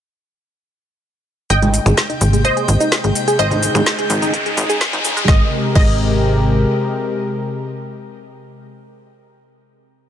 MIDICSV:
0, 0, Header, 1, 8, 480
1, 0, Start_track
1, 0, Key_signature, -4, "major"
1, 0, Tempo, 472441
1, 1525, Time_signature, 4, 2, 24, 8
1, 10253, End_track
2, 0, Start_track
2, 0, Title_t, "Synth texture"
2, 0, Program_c, 0, 99
2, 1524, Note_on_c, 0, 91, 85
2, 1525, Note_on_c, 0, 79, 84
2, 5374, Note_off_c, 0, 91, 0
2, 5375, Note_off_c, 0, 79, 0
2, 10253, End_track
3, 0, Start_track
3, 0, Title_t, "Synth pluck"
3, 0, Program_c, 1, 84
3, 1525, Note_on_c, 1, 75, 77
3, 1527, Note_on_c, 1, 79, 96
3, 2393, Note_off_c, 1, 75, 0
3, 2394, Note_off_c, 1, 79, 0
3, 2486, Note_on_c, 1, 72, 76
3, 2486, Note_on_c, 1, 75, 91
3, 3354, Note_off_c, 1, 72, 0
3, 3354, Note_off_c, 1, 75, 0
3, 3445, Note_on_c, 1, 72, 76
3, 3446, Note_on_c, 1, 75, 94
3, 5273, Note_off_c, 1, 72, 0
3, 5273, Note_off_c, 1, 75, 0
3, 5367, Note_on_c, 1, 75, 96
3, 5504, Note_off_c, 1, 75, 0
3, 5847, Note_on_c, 1, 75, 93
3, 9288, Note_off_c, 1, 75, 0
3, 10253, End_track
4, 0, Start_track
4, 0, Title_t, "Synth pluck"
4, 0, Program_c, 2, 84
4, 1648, Note_on_c, 2, 56, 76
4, 1722, Note_off_c, 2, 56, 0
4, 1888, Note_on_c, 2, 68, 76
4, 1961, Note_off_c, 2, 68, 0
4, 2128, Note_on_c, 2, 63, 73
4, 2202, Note_off_c, 2, 63, 0
4, 2368, Note_on_c, 2, 56, 74
4, 2442, Note_off_c, 2, 56, 0
4, 2608, Note_on_c, 2, 68, 74
4, 2682, Note_off_c, 2, 68, 0
4, 2849, Note_on_c, 2, 63, 78
4, 2922, Note_off_c, 2, 63, 0
4, 3088, Note_on_c, 2, 56, 82
4, 3162, Note_off_c, 2, 56, 0
4, 3328, Note_on_c, 2, 68, 80
4, 3402, Note_off_c, 2, 68, 0
4, 3568, Note_on_c, 2, 63, 79
4, 3642, Note_off_c, 2, 63, 0
4, 3809, Note_on_c, 2, 56, 79
4, 3882, Note_off_c, 2, 56, 0
4, 4049, Note_on_c, 2, 68, 77
4, 4122, Note_off_c, 2, 68, 0
4, 4290, Note_on_c, 2, 63, 80
4, 4362, Note_off_c, 2, 63, 0
4, 4530, Note_on_c, 2, 56, 75
4, 4602, Note_off_c, 2, 56, 0
4, 4769, Note_on_c, 2, 68, 79
4, 4842, Note_off_c, 2, 68, 0
4, 5010, Note_on_c, 2, 63, 80
4, 5083, Note_off_c, 2, 63, 0
4, 5251, Note_on_c, 2, 56, 80
4, 5323, Note_off_c, 2, 56, 0
4, 5366, Note_on_c, 2, 56, 94
4, 5503, Note_off_c, 2, 56, 0
4, 5846, Note_on_c, 2, 56, 99
4, 5983, Note_off_c, 2, 56, 0
4, 10253, End_track
5, 0, Start_track
5, 0, Title_t, "Analog synth pad"
5, 0, Program_c, 3, 89
5, 1525, Note_on_c, 3, 48, 80
5, 1526, Note_on_c, 3, 56, 73
5, 1526, Note_on_c, 3, 58, 74
5, 1526, Note_on_c, 3, 67, 91
5, 3426, Note_off_c, 3, 48, 0
5, 3426, Note_off_c, 3, 56, 0
5, 3426, Note_off_c, 3, 58, 0
5, 3426, Note_off_c, 3, 67, 0
5, 3444, Note_on_c, 3, 63, 75
5, 3444, Note_on_c, 3, 68, 88
5, 3445, Note_on_c, 3, 49, 83
5, 3445, Note_on_c, 3, 56, 74
5, 5345, Note_off_c, 3, 63, 0
5, 5345, Note_off_c, 3, 68, 0
5, 5346, Note_off_c, 3, 49, 0
5, 5346, Note_off_c, 3, 56, 0
5, 5365, Note_on_c, 3, 48, 85
5, 5365, Note_on_c, 3, 56, 76
5, 5365, Note_on_c, 3, 67, 77
5, 5366, Note_on_c, 3, 70, 91
5, 8806, Note_off_c, 3, 48, 0
5, 8806, Note_off_c, 3, 56, 0
5, 8806, Note_off_c, 3, 67, 0
5, 8807, Note_off_c, 3, 70, 0
5, 10253, End_track
6, 0, Start_track
6, 0, Title_t, "Analog synth bass"
6, 0, Program_c, 4, 38
6, 1525, Note_on_c, 4, 32, 97
6, 1822, Note_off_c, 4, 32, 0
6, 1890, Note_on_c, 4, 32, 99
6, 1966, Note_off_c, 4, 32, 0
6, 2246, Note_on_c, 4, 32, 100
6, 2542, Note_off_c, 4, 32, 0
6, 2725, Note_on_c, 4, 32, 104
6, 2808, Note_off_c, 4, 32, 0
6, 3091, Note_on_c, 4, 32, 88
6, 3166, Note_off_c, 4, 32, 0
6, 3445, Note_on_c, 4, 32, 99
6, 3742, Note_off_c, 4, 32, 0
6, 3809, Note_on_c, 4, 32, 100
6, 3885, Note_off_c, 4, 32, 0
6, 4165, Note_on_c, 4, 32, 104
6, 4462, Note_off_c, 4, 32, 0
6, 4646, Note_on_c, 4, 32, 108
6, 4728, Note_off_c, 4, 32, 0
6, 5010, Note_on_c, 4, 32, 91
6, 5086, Note_off_c, 4, 32, 0
6, 5366, Note_on_c, 4, 32, 100
6, 5503, Note_off_c, 4, 32, 0
6, 5847, Note_on_c, 4, 32, 97
6, 6765, Note_off_c, 4, 32, 0
6, 10253, End_track
7, 0, Start_track
7, 0, Title_t, "Riser"
7, 0, Program_c, 5, 103
7, 1524, Note_on_c, 5, 60, 78
7, 5365, Note_off_c, 5, 60, 0
7, 10253, End_track
8, 0, Start_track
8, 0, Title_t, "Drums"
8, 1525, Note_on_c, 9, 36, 112
8, 1525, Note_on_c, 9, 42, 68
8, 1528, Note_on_c, 9, 82, 33
8, 1626, Note_off_c, 9, 36, 0
8, 1627, Note_off_c, 9, 42, 0
8, 1629, Note_off_c, 9, 82, 0
8, 1649, Note_on_c, 9, 63, 95
8, 1650, Note_on_c, 9, 42, 41
8, 1751, Note_off_c, 9, 63, 0
8, 1752, Note_off_c, 9, 42, 0
8, 1765, Note_on_c, 9, 46, 104
8, 1768, Note_on_c, 9, 82, 77
8, 1866, Note_off_c, 9, 46, 0
8, 1869, Note_off_c, 9, 82, 0
8, 1890, Note_on_c, 9, 26, 61
8, 1890, Note_on_c, 9, 42, 39
8, 1890, Note_on_c, 9, 63, 86
8, 1893, Note_on_c, 9, 82, 43
8, 1992, Note_off_c, 9, 26, 0
8, 1992, Note_off_c, 9, 42, 0
8, 1992, Note_off_c, 9, 63, 0
8, 1995, Note_off_c, 9, 82, 0
8, 2004, Note_on_c, 9, 36, 111
8, 2006, Note_on_c, 9, 42, 69
8, 2007, Note_on_c, 9, 38, 125
8, 2008, Note_on_c, 9, 82, 33
8, 2106, Note_off_c, 9, 36, 0
8, 2107, Note_off_c, 9, 42, 0
8, 2109, Note_off_c, 9, 38, 0
8, 2110, Note_off_c, 9, 82, 0
8, 2131, Note_on_c, 9, 42, 40
8, 2232, Note_off_c, 9, 42, 0
8, 2245, Note_on_c, 9, 46, 105
8, 2248, Note_on_c, 9, 82, 78
8, 2347, Note_off_c, 9, 46, 0
8, 2350, Note_off_c, 9, 82, 0
8, 2370, Note_on_c, 9, 42, 41
8, 2373, Note_on_c, 9, 82, 44
8, 2472, Note_off_c, 9, 42, 0
8, 2475, Note_off_c, 9, 82, 0
8, 2485, Note_on_c, 9, 36, 121
8, 2486, Note_on_c, 9, 42, 68
8, 2488, Note_on_c, 9, 82, 33
8, 2586, Note_off_c, 9, 36, 0
8, 2587, Note_off_c, 9, 42, 0
8, 2590, Note_off_c, 9, 82, 0
8, 2611, Note_on_c, 9, 42, 41
8, 2712, Note_off_c, 9, 42, 0
8, 2726, Note_on_c, 9, 46, 103
8, 2728, Note_on_c, 9, 82, 76
8, 2827, Note_off_c, 9, 46, 0
8, 2830, Note_off_c, 9, 82, 0
8, 2850, Note_on_c, 9, 42, 41
8, 2853, Note_on_c, 9, 82, 45
8, 2952, Note_off_c, 9, 42, 0
8, 2955, Note_off_c, 9, 82, 0
8, 2965, Note_on_c, 9, 36, 117
8, 2965, Note_on_c, 9, 42, 67
8, 2967, Note_on_c, 9, 38, 119
8, 2968, Note_on_c, 9, 82, 32
8, 3066, Note_off_c, 9, 36, 0
8, 3066, Note_off_c, 9, 42, 0
8, 3068, Note_off_c, 9, 38, 0
8, 3069, Note_off_c, 9, 82, 0
8, 3089, Note_on_c, 9, 42, 40
8, 3191, Note_off_c, 9, 42, 0
8, 3205, Note_on_c, 9, 46, 106
8, 3208, Note_on_c, 9, 82, 79
8, 3306, Note_off_c, 9, 46, 0
8, 3309, Note_off_c, 9, 82, 0
8, 3330, Note_on_c, 9, 42, 42
8, 3332, Note_on_c, 9, 82, 45
8, 3431, Note_off_c, 9, 42, 0
8, 3434, Note_off_c, 9, 82, 0
8, 3444, Note_on_c, 9, 42, 67
8, 3445, Note_on_c, 9, 36, 123
8, 3447, Note_on_c, 9, 82, 32
8, 3546, Note_off_c, 9, 36, 0
8, 3546, Note_off_c, 9, 42, 0
8, 3549, Note_off_c, 9, 82, 0
8, 3563, Note_on_c, 9, 63, 104
8, 3570, Note_on_c, 9, 42, 39
8, 3664, Note_off_c, 9, 63, 0
8, 3672, Note_off_c, 9, 42, 0
8, 3685, Note_on_c, 9, 46, 110
8, 3688, Note_on_c, 9, 82, 77
8, 3786, Note_off_c, 9, 46, 0
8, 3789, Note_off_c, 9, 82, 0
8, 3810, Note_on_c, 9, 26, 65
8, 3810, Note_on_c, 9, 42, 40
8, 3812, Note_on_c, 9, 63, 98
8, 3813, Note_on_c, 9, 82, 43
8, 3912, Note_off_c, 9, 26, 0
8, 3912, Note_off_c, 9, 42, 0
8, 3913, Note_off_c, 9, 63, 0
8, 3915, Note_off_c, 9, 82, 0
8, 3925, Note_on_c, 9, 36, 119
8, 3925, Note_on_c, 9, 42, 67
8, 3927, Note_on_c, 9, 38, 122
8, 3928, Note_on_c, 9, 82, 32
8, 4026, Note_off_c, 9, 36, 0
8, 4026, Note_off_c, 9, 42, 0
8, 4028, Note_off_c, 9, 38, 0
8, 4029, Note_off_c, 9, 82, 0
8, 4049, Note_on_c, 9, 42, 40
8, 4151, Note_off_c, 9, 42, 0
8, 4164, Note_on_c, 9, 46, 110
8, 4167, Note_on_c, 9, 82, 79
8, 4265, Note_off_c, 9, 46, 0
8, 4268, Note_off_c, 9, 82, 0
8, 4289, Note_on_c, 9, 42, 41
8, 4289, Note_on_c, 9, 63, 69
8, 4292, Note_on_c, 9, 82, 43
8, 4390, Note_off_c, 9, 63, 0
8, 4391, Note_off_c, 9, 42, 0
8, 4394, Note_off_c, 9, 82, 0
8, 4405, Note_on_c, 9, 36, 127
8, 4405, Note_on_c, 9, 42, 68
8, 4408, Note_on_c, 9, 82, 32
8, 4506, Note_off_c, 9, 36, 0
8, 4507, Note_off_c, 9, 42, 0
8, 4510, Note_off_c, 9, 82, 0
8, 4531, Note_on_c, 9, 42, 40
8, 4632, Note_off_c, 9, 42, 0
8, 4646, Note_on_c, 9, 46, 108
8, 4649, Note_on_c, 9, 82, 78
8, 4748, Note_off_c, 9, 46, 0
8, 4751, Note_off_c, 9, 82, 0
8, 4771, Note_on_c, 9, 42, 42
8, 4774, Note_on_c, 9, 82, 45
8, 4872, Note_off_c, 9, 42, 0
8, 4875, Note_off_c, 9, 82, 0
8, 4886, Note_on_c, 9, 36, 123
8, 4886, Note_on_c, 9, 42, 67
8, 4888, Note_on_c, 9, 38, 121
8, 4889, Note_on_c, 9, 82, 33
8, 4987, Note_off_c, 9, 36, 0
8, 4987, Note_off_c, 9, 42, 0
8, 4989, Note_off_c, 9, 38, 0
8, 4990, Note_off_c, 9, 82, 0
8, 5011, Note_on_c, 9, 42, 40
8, 5113, Note_off_c, 9, 42, 0
8, 5126, Note_on_c, 9, 46, 117
8, 5126, Note_on_c, 9, 63, 100
8, 5129, Note_on_c, 9, 82, 81
8, 5227, Note_off_c, 9, 63, 0
8, 5228, Note_off_c, 9, 46, 0
8, 5231, Note_off_c, 9, 82, 0
8, 5253, Note_on_c, 9, 42, 42
8, 5256, Note_on_c, 9, 82, 44
8, 5354, Note_off_c, 9, 42, 0
8, 5357, Note_off_c, 9, 82, 0
8, 5366, Note_on_c, 9, 36, 119
8, 5366, Note_on_c, 9, 38, 86
8, 5468, Note_off_c, 9, 36, 0
8, 5468, Note_off_c, 9, 38, 0
8, 5846, Note_on_c, 9, 36, 115
8, 5847, Note_on_c, 9, 49, 89
8, 5948, Note_off_c, 9, 36, 0
8, 5948, Note_off_c, 9, 49, 0
8, 10253, End_track
0, 0, End_of_file